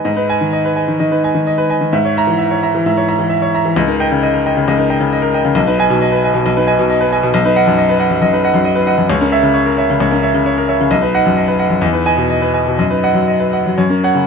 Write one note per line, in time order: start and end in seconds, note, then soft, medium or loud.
0.04 0.97 G#2 medium
0.04 0.24 D#5 medium
0.16 0.36 D#4 medium
0.16 0.36 B4 medium
0.29 0.40 D#5 medium
0.29 0.40 G#5 medium
0.41 0.60 D#3 medium
0.53 0.72 D#5 medium
0.65 0.84 B4 medium
0.76 0.87 D#5 medium
0.76 0.87 G#5 medium
0.88 0.98 D#3 medium
0.99 1.19 D#3 medium
0.99 1.19 D#5 medium
1.11 1.30 D#4 medium
1.11 1.30 B4 medium
1.24 1.34 D#5 medium
1.24 1.34 G#5 medium
1.35 1.54 D#3 medium
1.47 1.66 D#5 medium
1.58 1.77 B4 medium
1.70 1.80 D#5 medium
1.70 1.81 G#5 medium
1.81 1.93 D#3 medium
1.93 2.83 G#2 medium
1.93 2.11 E5 medium
2.05 2.23 C#5 medium
2.17 2.27 E5 medium
2.17 2.28 A#5 medium
2.27 2.46 E3 medium
2.39 2.58 E5 medium
2.51 2.70 C#5 medium
2.63 2.73 E5 medium
2.63 2.74 A#5 medium
2.75 2.93 E3 medium
2.86 3.74 G#2 medium
2.86 3.04 E5 medium
2.97 3.15 C#5 medium
3.09 3.19 E5 medium
3.09 3.19 A#5 medium
3.19 3.37 E3 medium
3.30 3.49 E5 medium
3.42 3.61 C#5 medium
3.54 3.64 E5 medium
3.54 3.65 A#5 medium
3.65 3.77 E3 medium
3.76 4.65 C#2 medium
3.76 3.95 D#5 medium
3.88 4.06 D#4 medium
3.88 4.06 A#4 medium
4.00 4.10 D#5 medium
4.00 4.10 G5 loud
4.12 4.29 C#3 medium
4.23 4.41 D#5 medium
4.34 4.52 A#4 medium
4.46 4.56 D#5 medium
4.46 4.56 G5 medium
4.57 4.75 C#3 medium
4.68 5.55 C#2 medium
4.68 4.86 D#5 medium
4.78 4.96 D#4 medium
4.78 4.96 A#4 medium
4.90 5.00 D#5 medium
4.90 5.00 G5 medium
5.00 5.19 C#3 medium
5.13 5.30 D#5 medium
5.22 5.41 A#4 medium
5.34 5.45 D#5 medium
5.34 5.45 G5 medium
5.45 5.57 C#3 medium
5.55 6.42 B1 medium
5.55 5.74 D#5 medium
5.67 5.86 D#4 medium
5.67 5.86 B4 medium
5.79 5.89 D#5 medium
5.79 5.90 G#5 loud
5.90 6.08 B2 medium
6.02 6.19 D#5 medium
6.12 6.30 B4 medium
6.23 6.33 D#5 medium
6.23 6.34 G#5 medium
6.34 6.52 B2 medium
6.46 7.32 B1 medium
6.46 6.63 D#5 medium
6.57 6.74 D#4 medium
6.57 6.74 B4 medium
6.67 6.77 D#5 medium
6.67 6.77 G#5 medium
6.79 6.97 B2 medium
6.90 7.08 D#5 medium
7.01 7.19 B4 medium
7.12 7.22 D#5 medium
7.12 7.22 G#5 medium
7.23 7.34 B2 medium
7.34 8.19 B1 loud
7.34 7.52 D#5 medium
7.45 7.63 D#4 medium
7.45 7.63 B4 medium
7.56 7.66 D#5 medium
7.56 7.66 F#5 loud
7.67 7.85 F#2 medium
7.78 7.96 D#5 medium
7.89 8.07 B4 medium
7.99 8.09 D#5 medium
7.99 8.10 F#5 medium
8.10 8.20 F#2 medium
8.21 8.40 F#2 medium
8.21 8.40 D#5 medium
8.33 8.51 D#4 medium
8.33 8.51 B4 medium
8.44 8.54 D#5 medium
8.44 8.55 F#5 medium
8.54 8.73 F#2 medium
8.65 8.83 D#5 medium
8.75 8.94 B4 medium
8.87 8.98 D#5 medium
8.87 8.98 F#5 medium
8.98 9.10 F#2 medium
9.10 9.97 C#2 medium
9.10 9.28 C#5 medium
9.21 9.40 C#4 medium
9.21 9.39 A#4 medium
9.32 9.43 C#5 medium
9.32 9.43 E5 loud
9.43 9.62 C#3 medium
9.54 9.73 C#5 medium
9.66 9.85 A#4 medium
9.77 9.88 C#5 medium
9.77 9.88 E5 medium
9.90 10.08 C#3 medium
10.00 10.88 C#2 medium
10.00 10.19 C#5 medium
10.11 10.30 C#4 medium
10.11 10.30 A#4 medium
10.23 10.33 C#5 medium
10.23 10.34 E5 medium
10.34 10.53 C#3 medium
10.46 10.64 C#5 medium
10.58 10.76 A#4 medium
10.69 10.79 C#5 medium
10.69 10.79 E5 medium
10.80 10.92 C#3 medium
10.91 11.79 B1 medium
10.91 11.09 D#5 medium
11.02 11.21 D#4 medium
11.02 11.21 B4 medium
11.14 11.24 D#5 medium
11.14 11.25 F#5 loud
11.26 11.44 F#2 medium
11.37 11.55 D#5 medium
11.48 11.66 B4 medium
11.59 11.69 D#5 medium
11.59 11.69 F#5 medium
11.70 11.82 F#2 medium
11.81 12.76 E2 medium
11.81 12.01 D#5 medium
11.93 12.13 D#4 medium
11.93 12.13 B4 medium
12.06 12.17 D#5 medium
12.06 12.17 G#5 loud
12.17 12.37 B2 medium
12.30 12.50 D#5 medium
12.42 12.62 B4 medium
12.54 12.65 D#5 medium
12.54 12.65 G#5 medium
12.67 12.80 B2 medium
12.79 13.75 F#2 medium
12.79 12.99 D#5 medium
12.90 13.11 D#4 medium
12.90 13.11 B4 medium
13.03 13.15 D#5 medium
13.03 13.15 F#5 medium
13.14 13.35 F#3 medium
13.28 13.48 D#5 medium
13.40 13.61 B4 medium
13.53 13.65 D#5 medium
13.53 13.65 F#5 medium
13.66 13.79 F#3 medium
13.78 14.27 F#2 medium
13.78 13.98 C#5 medium
13.90 14.10 C#4 medium
13.90 14.10 A#4 medium
14.03 14.14 C#5 medium
14.03 14.15 F#5 medium
14.15 14.27 C#3 medium